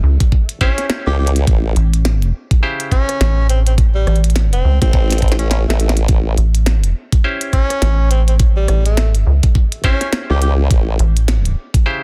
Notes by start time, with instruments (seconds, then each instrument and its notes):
Already playing: clav C#4 E4 G4 C5
0.03 analog synth bass C#2
0.20 kick, closed hi-hat
0.32 kick
0.49 closed hi-hat
0.61 clav C#4 E4 G4 C5, tenor saxophone C#4, kick, cross-stick, closed hi-hat
0.78 snare, closed hi-hat
0.90 snare
1.07 wobble bass C#2, tenor saxophone G4, cross-stick
1.19 tenor saxophone G4
1.27 closed hi-hat
1.36 closed hi-hat
1.47 wobble bass A1, kick, closed hi-hat
1.76 analog synth bass A1, closed hi-hat
1.94 closed hi-hat
2.05 snare, closed hi-hat
2.22 closed hi-hat
2.51 kick, closed hi-hat
2.63 clav C#3 E4 G4 C5
2.80 closed hi-hat
2.92 tenor saxophone C#4, kick, cross-stick, closed hi-hat
3.09 cross-stick, closed hi-hat
3.21 analog synth bass A1, snare, closed hi-hat
3.49 tenor saxophone C4, closed hi-hat
3.66 tenor saxophone C4, closed hi-hat
3.78 kick, closed hi-hat
3.95 tenor saxophone G3
4.07 analog synth bass A1, cross-stick, closed hi-hat
4.16 closed hi-hat
4.24 closed hi-hat
4.30 closed hi-hat
4.36 snare, closed hi-hat
4.53 tenor saxophone C4, closed hi-hat
4.65 analog synth bass C#2
4.82 wobble bass A1, tenor saxophone C4, kick, closed hi-hat
4.93 kick, snare
5.10 snare, closed hi-hat
5.12 closed hi-hat
5.18 closed hi-hat
5.22 kick, closed hi-hat
5.28 snare, closed hi-hat
5.32 closed hi-hat
5.39 tenor saxophone C#4, closed hi-hat
5.51 tenor saxophone C#4, snare, closed hi-hat
5.68 wobble bass A1, tenor saxophone A3, snare
5.80 tenor saxophone A3, closed hi-hat
5.89 snare
5.97 closed hi-hat
6.08 wobble bass A1, kick, closed hi-hat
6.38 analog synth bass A1, closed hi-hat
6.55 closed hi-hat
6.66 snare, closed hi-hat
6.84 closed hi-hat
7.12 kick, closed hi-hat
7.24 clav C#4 E4 G4 C5
7.41 closed hi-hat
7.53 tenor saxophone C#4, kick, cross-stick, closed hi-hat
7.70 cross-stick, closed hi-hat
7.82 analog synth bass A1, snare, closed hi-hat
8.11 tenor saxophone C4, closed hi-hat
8.28 tenor saxophone C4, closed hi-hat
8.40 kick, closed hi-hat
8.56 tenor saxophone G3
8.68 analog synth bass A1, cross-stick, closed hi-hat
8.86 tenor saxophone A3, closed hi-hat
8.97 snare, closed hi-hat
9.15 closed hi-hat
9.27 analog synth bass C#2
9.43 kick, closed hi-hat
9.55 kick
9.72 closed hi-hat
9.84 tenor saxophone C#4, clav C#4 E4 G4 C5, kick, cross-stick, closed hi-hat
10.01 snare, closed hi-hat
10.13 snare, closed hi-hat
10.30 wobble bass C#2, tenor saxophone G4, cross-stick
10.42 tenor saxophone G4, closed hi-hat
10.71 wobble bass A1, kick, closed hi-hat
10.99 analog synth bass A1, closed hi-hat
11.17 closed hi-hat
11.28 snare, closed hi-hat
11.45 closed hi-hat
11.74 kick, closed hi-hat
11.86 clav C#3 E4 G4 C5